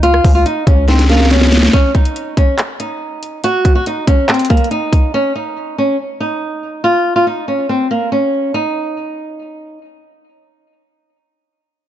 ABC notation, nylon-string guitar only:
X:1
M:4/4
L:1/16
Q:1/4=141
K:Db
V:1 name="Nylon-string guitar"
F3 F E2 D2 C2 B,2 D4 | D2 E4 D2 z2 E6 | G3 G E2 D2 C2 B,2 E4 | D2 E4 D2 z2 E6 |
F3 F E2 D2 C2 B,2 D4 | E12 z4 | z16 |]